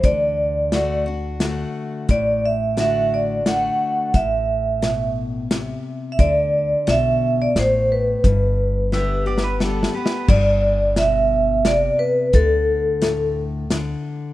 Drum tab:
CC |---------|---------|---------|---------|
HH |x--x--x--|x--x--x--|x--x--x--|x--x--x--|
SD |---o--o--|---o--o--|---o--o--|---o--o--|
BD |o--------|o--------|o--------|o--------|

CC |---------|x--------|---------|
HH |x--------|---x--x--|x--x--x--|
SD |---o-oooo|---o--o--|---o--o--|
BD |o--------|o--------|o--------|